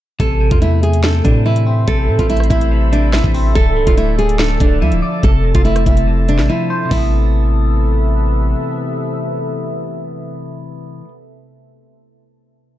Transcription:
0.20 808-style bass A1, clean electric guitar C3, ambient pad A4 C5 E5 B5, nylon-string guitar A4, kick, closed hi-hat
0.41 clean electric guitar C3
0.51 808-style bass E2, nylon-string guitar F4, kick, closed hi-hat
0.62 clean electric guitar A3, nylon-string guitar E4, closed hi-hat
0.83 nylon-string guitar G#4, closed hi-hat
0.93 closed hi-hat
1.04 clean electric guitar C3, nylon-string guitar A4, snare
1.24 808-style bass A2, clean electric guitar C3, nylon-string guitar D4, kick, closed hi-hat
1.46 clean electric guitar E3, nylon-string guitar E4
1.56 closed hi-hat
1.67 clean electric guitar C4
1.88 808-style bass A1, clean electric guitar C3, nylon-string guitar A4, kick, closed hi-hat
2.08 808-style bass A2, clean electric guitar C3
2.19 808-style bass A1, nylon-string guitar F4, kick, closed hi-hat
2.30 clean electric guitar A3, nylon-string guitar E4, closed hi-hat
2.37 cross-stick, closed hi-hat
2.44 closed hi-hat
2.50 808-style bass A1, nylon-string guitar E4, kick, closed hi-hat
2.61 closed hi-hat
2.72 clean electric guitar C3
2.92 clean electric guitar C3, nylon-string guitar D4, closed hi-hat
3.13 clean electric guitar E3, nylon-string guitar E4, snare
3.24 808-style bass A1, kick
3.34 clean electric guitar C4, open hi-hat
3.55 808-style bass D1, clean electric guitar D3, nylon-string guitar A4, ambient pad D5 A5 D6, kick, closed hi-hat
3.76 808-style bass C1, clean electric guitar D3
3.87 808-style bass D1, nylon-string guitar F4, kick, closed hi-hat
3.97 clean electric guitar A3, nylon-string guitar E4, closed hi-hat
4.18 nylon-string guitar G#4, closed hi-hat
4.29 closed hi-hat
4.39 clean electric guitar D3, nylon-string guitar A4, snare
4.60 808-style bass D1, clean electric guitar D3, nylon-string guitar D4, kick, closed hi-hat
4.81 808-style bass D2, clean electric guitar F3, nylon-string guitar E4
4.92 808-style bass D1, closed hi-hat
5.02 clean electric guitar D5
5.23 808-style bass F1, clean electric guitar C3, nylon-string guitar A4, ambient pad C5 C6, kick, closed hi-hat
5.44 clean electric guitar C3
5.55 808-style bass F1, nylon-string guitar F4, kick, closed hi-hat
5.65 clean electric guitar A3, nylon-string guitar E4, closed hi-hat
5.76 cross-stick, closed hi-hat
5.86 808-style bass F1, nylon-string guitar E4, kick, closed hi-hat
5.97 closed hi-hat
6.07 clean electric guitar C3
6.28 clean electric guitar C3, nylon-string guitar D4, closed hi-hat
6.39 808-style bass A1, snare
6.49 clean electric guitar F3, nylon-string guitar E4
6.70 clean electric guitar C5
6.85 clean electric guitar C3
6.89 808-style bass A1, ambient pad C3 A4 B4 E5, clean electric guitar E3 A3, nylon-string guitar E4, kick, open hi-hat
6.97 clean electric guitar B3

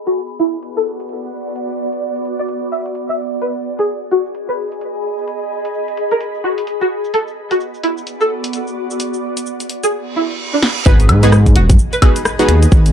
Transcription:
Already playing: ambient pad B3 F#4 G#4 B5
0.07 synth pluck F#4, ambient pad D5, closed hi-hat, cabasa
0.16 cabasa
0.30 cabasa
0.39 synth pluck E4, closed hi-hat
0.53 cabasa
0.63 closed hi-hat, cabasa
0.77 synth pluck A4, cabasa
1.00 closed hi-hat, cabasa
1.09 closed hi-hat, cabasa
1.23 cabasa
1.46 cabasa
1.56 closed hi-hat, cabasa
1.70 cabasa
1.93 closed hi-hat, cabasa
2.02 cabasa
2.16 closed hi-hat, cabasa
2.25 closed hi-hat
2.39 synth pluck D5, closed hi-hat, cabasa
2.48 closed hi-hat, cabasa
2.62 cabasa
2.72 synth pluck E5
2.86 closed hi-hat, cabasa
2.95 closed hi-hat, cabasa
3.09 synth pluck E5, cabasa
3.32 cabasa
3.42 ambient pad G#4, synth pluck B4, closed hi-hat, cabasa
3.56 cabasa
3.79 synth pluck G#4, ambient pad D#5, closed hi-hat, cabasa
3.88 cabasa
4.02 cabasa
4.11 synth pluck F#4, closed hi-hat
4.18 ambient pad B5
4.25 cabasa
4.35 closed hi-hat, cabasa
4.49 synth pluck B4, cabasa
4.72 closed hi-hat, cabasa
4.81 closed hi-hat, cabasa
4.95 cabasa
5.18 cabasa
5.28 closed hi-hat, cabasa
5.42 cabasa
5.65 closed hi-hat, cabasa
5.74 cabasa
5.88 closed hi-hat, cabasa
5.97 closed hi-hat
6.11 synth pluck A#4, closed hi-hat, cabasa
6.21 closed hi-hat, cabasa
6.35 cabasa
6.44 synth pluck F#4
6.58 closed hi-hat, cabasa
6.67 closed hi-hat, cabasa
6.81 synth pluck F#4, cabasa
6.90 ambient pad B3
7.04 ambient pad F#4, cabasa
7.14 synth pluck A4, closed hi-hat, cabasa
7.28 cabasa
7.51 synth pluck F#4, closed hi-hat, cabasa
7.57 ambient pad D5, cabasa
7.74 cabasa
7.83 synth pluck E4, closed hi-hat
7.98 cabasa
8.07 closed hi-hat, cabasa
8.21 synth pluck A4, cabasa
8.44 closed hi-hat, cabasa
8.53 closed hi-hat, cabasa
8.67 cabasa
8.90 cabasa
9.00 closed hi-hat, cabasa
9.14 cabasa
9.37 closed hi-hat, cabasa
9.46 cabasa
9.60 closed hi-hat, cabasa
9.70 closed hi-hat
9.83 synth pluck G#4, closed hi-hat, cabasa
9.93 reverse cymbal
10.16 synth pluck E4
10.53 synth pluck D4
10.62 snare
10.86 detuned saw bass G#1, synth stab B3 D#4 F#4 G#4 B4, ambient pad G#4, synth pluck B4, kick, impact, cabasa
11.00 ambient pad D#5, closed hi-hat, cabasa
11.09 detuned saw bass G#2, finger snap, open hi-hat, high woodblock
11.23 synth stab B3 D#4 F#4 G#4 B4, synth pluck G#4, closed hi-hat, cabasa
11.32 cross-stick, cabasa
11.46 kick, closed hi-hat, cabasa
11.55 detuned saw bass D#1, synth pluck F#4, ambient pad B5, open hi-hat
11.70 detuned saw bass G#2, kick, closed hi-hat, cabasa
11.79 cabasa
11.93 synth pluck B4, closed hi-hat, cabasa
12.02 synth stab B3 D#4 F#4 G#4 B4, kick, open hi-hat, high woodblock
12.16 closed hi-hat, cabasa
12.25 cross-stick, cabasa
12.39 synth stab B3 D#4 F#4 G#4 B4, closed hi-hat, cabasa
12.49 detuned saw bass D#2, finger snap, open hi-hat
12.63 closed hi-hat, cabasa
12.72 detuned saw bass G#1, kick, cabasa
12.86 closed hi-hat, cabasa

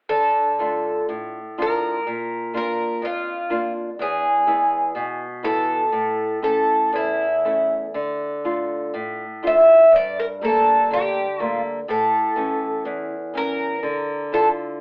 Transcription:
0.09 nylon-string guitar D3, twelve-string acoustic guitar A4
0.59 nylon-string guitar A3 D4 F4
1.09 nylon-string guitar A2
1.58 nylon-string guitar F3 D4 F4, twelve-string acoustic guitar A#4
2.07 nylon-string guitar A#2
2.54 nylon-string guitar A#3 D4 F4, twelve-string acoustic guitar A#4
3.02 nylon-string guitar F2, twelve-string acoustic guitar F4
3.50 nylon-string guitar A#3 D4 F4
3.99 nylon-string guitar E2, twelve-string acoustic guitar G#4
4.47 nylon-string guitar G#3 B3 E4
4.95 nylon-string guitar B2
5.43 nylon-string guitar E3 B3 E4, twelve-string acoustic guitar A4
5.92 nylon-string guitar A2
6.42 nylon-string guitar A3 C#4 E4, twelve-string acoustic guitar A4
6.93 nylon-string guitar E2, twelve-string acoustic guitar E4
7.45 nylon-string guitar A3 C#4 E4
7.94 nylon-string guitar D3
8.45 nylon-string guitar A3 D4 F4
8.94 nylon-string guitar A2
9.43 nylon-string guitar A3 D4 F4
9.47 twelve-string acoustic guitar E5
9.92 nylon-string guitar G2
9.96 twelve-string acoustic guitar D5
10.20 twelve-string acoustic guitar A#4
10.41 nylon-string guitar G3 A3 A#3, twelve-string acoustic guitar A4
10.91 nylon-string guitar D3, twelve-string acoustic guitar G4
11.39 nylon-string guitar G3 A3 A#3
11.43 twelve-string acoustic guitar F4
11.88 nylon-string guitar A2, twelve-string acoustic guitar A4
12.36 nylon-string guitar E3 A3 C#4
12.85 nylon-string guitar E2
13.34 nylon-string guitar E3 C#4, twelve-string acoustic guitar A#4
13.83 nylon-string guitar D3
14.32 nylon-string guitar D4 E4 F4, twelve-string acoustic guitar A4

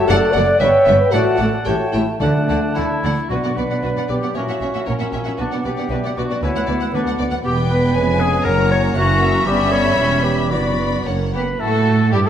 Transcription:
Already playing: bassoon A3, flute A5
0.07 double bass section F#1, cello section F#2, viola section A3, french horn section A4, clarinet D5, violin section D5 F#5, cor anglais F#5
0.33 double bass section F#1, cello section F#2, viola section A3, french horn section D5, violin section F#5
0.37 violin section D5
0.58 double bass section G1, cello section G2, viola section B3, bassoon B3, violin section B4 E5, french horn section C#5, clarinet E5, flute G5, cor anglais G5
0.86 double bass section G1, cello section G2, viola section B3, violin section B4 E5
1.00 french horn section B4
1.11 double bass section A1, cello section A2, bassoon A3, viola section A3, french horn section F#4, violin section D5 F#5, clarinet D5, cor anglais F#5, flute A5
1.37 double bass section A1, cello section A2, viola section A3, french horn section A4, violin section D5 F#5
1.65 double bass section A1, cello section A2, viola section A3, bassoon A3, french horn section G4, clarinet C#5, violin section C#5 G5, cor anglais G5, flute A5
1.78 french horn section F#4
1.92 double bass section A1, cello section A2, viola section A3, french horn section E4, violin section C#5 G5
2.19 double bass section D2, timpani D3, cello section D3, viola section A3, bassoon A3, french horn section D4, clarinet D5, violin section D5 F#5, cor anglais F#5, flute A5
2.48 double bass section D2, cello section D3, viola section A3, violin section D5 F#5
2.74 double bass section D2, cello section D3, viola section A3, clarinet E4, cor anglais E4, violin section D5 F#5
3.04 double bass section D2, cello section D3, viola section A3, violin section D5 F#5
3.29 double bass section B1, timpani B2, cello section B2, french horn section F#3 D4, viola section B3, bassoon D4, clarinet F#4, cor anglais F#4, violin section F#4 B4, flute F#5
3.43 cello section B2, viola section B3, violin section D5 F#5
3.57 double bass section B1, cello section B2, viola section B3, clarinet B4, cor anglais B4, violin section B4 D5
3.70 cello section B2, viola section B3, violin section D5 F#5
3.83 double bass section B1, cello section B2, bassoon B3, viola section B3, violin section F#4 B4, flute D5
3.96 cello section B2, viola section B3, violin section D5 F#5
4.09 double bass section B1, cello section B2, viola section B3, clarinet G4, cor anglais G4, violin section B4 D5
4.22 cello section B2, viola section B3, violin section D5 F#5
4.35 double bass section A#1, cello section A#2, bassoon C#4, viola section C#4, french horn section E4, cor anglais F#4, clarinet F#4, violin section A#4 C#5, flute E5
4.48 cello section A#2, viola section C#4, violin section E5 F#5
4.61 double bass section A#1, cello section A#2, bassoon C#4, viola section C#4, violin section C#5 E5
4.74 cello section A#2, viola section C#4, violin section E5 F#5
4.86 double bass section A#1, cello section A#2, bassoon A#3, cor anglais C#4, clarinet C#4, viola section C#4, violin section A#4 C#5, flute F#5
4.99 cello section A#2, viola section C#4, violin section E5 F#5
5.12 double bass section A#1, cello section A#2, viola section C#4, violin section C#5 E5, flute G5
5.25 cello section A#2, viola section C#4, violin section E5 F#5
5.37 double bass section B1, cello section B2, french horn section F#3 D4, bassoon B3, viola section B3, clarinet D4, cor anglais D4, violin section F#4 B4, flute F#5
5.52 cello section B2, viola section B3, violin section D5 F#5
5.65 double bass section B1, cello section B2, viola section B3, cor anglais G4, clarinet G4, violin section B4 D5
5.77 cello section B2, viola section B3, violin section D5 F#5
5.90 double bass section B1, cello section B2, viola section B3, bassoon D4, violin section F#4 B4, flute E5
6.03 cello section B2, viola section B3, violin section D5 F#5
6.15 double bass section B1, cello section B2, viola section B3, cor anglais F#4, clarinet F#4, violin section B4 D5, flute D5
6.29 cello section B2, viola section B3, violin section D5 F#5
6.41 double bass section D2, cello section D2, viola section B3, french horn section B3, bassoon C#4, cor anglais E4, clarinet E4, violin section B4, flute F#5
6.55 cello section D2, viola section B3, violin section F#5
6.67 double bass section D2, cello section D2, viola section B3, bassoon B3, violin section D5
6.80 cello section D2, viola section B3, violin section F#5
6.91 double bass section D2, cello section D2, viola section B3, bassoon B3, clarinet D4, violin section B4, flute F#5
6.95 cor anglais D4, violin section B4
7.03 cello section D2, viola section B3, violin section F#5
7.07 violin section F#5
7.18 double bass section D2, cello section D2, viola section B3, violin section D5
7.31 cello section D2, viola section B3, violin section F#5
7.43 double bass section E1, cello section E2, french horn section G3, viola section B3, bassoon B3, cor anglais G4, clarinet G4, violin section B4 G5, flute G5
7.70 cor anglais B4, clarinet B4
7.95 double bass section F1, cello section F2, french horn section G#3 C#4, bassoon C#4, violin section G#5, flute G#5
8.20 clarinet G#4, cor anglais G#4
8.45 double bass section F#1, timpani F#2, cello section F#2, french horn section F#3, viola section A#3, bassoon C#4, clarinet A#4, cor anglais A#4, violin section C#5 A#5, flute F#5
8.71 clarinet C#5, cor anglais C#5
8.95 double bass section F#1, cello section F#2, french horn section E3 A#3, bassoon A#3, viola section C#4, clarinet F#4, cor anglais F#4, flute E5, violin section F#5 A#5
9.22 violin section E5
9.46 double bass section G1, cello section G2, french horn section G3 B3, bassoon B3, cor anglais G4, clarinet G4, flute D5, violin section B5
9.72 bassoon A3, clarinet C#5, cor anglais C#5
9.97 double bass section E1, cello section E2, bassoon G3, french horn section G3 C#4, viola section C#4, flute C#5
10.23 viola section B3, cor anglais G4, clarinet G4
10.50 double bass section F#1, cello section F#2, viola section B3, french horn section B3 D4, bassoon B3, clarinet F#4, cor anglais F#4, violin section D5 B5, flute D5
11.05 double bass section F#1, cello section F#2, viola section A#3, french horn section A#3 C#4, bassoon A#3, flute C#5, violin section C#5 F#5
11.33 cello section B3, violin section G4, clarinet B4, flute B5
11.59 double bass section A2, bassoon A3, french horn section A3, viola section A3, cello section A3, violin section F#4 A4, clarinet A4, cor anglais A4, flute A5
12.11 double bass section G2, french horn section G3, viola section G3, bassoon G3, cello section G3, violin section E4 G4, cor anglais G4, clarinet G4, flute G5
12.25 double bass section A2, french horn section A3, violin section F#4 A4, cor anglais A4, flute A5

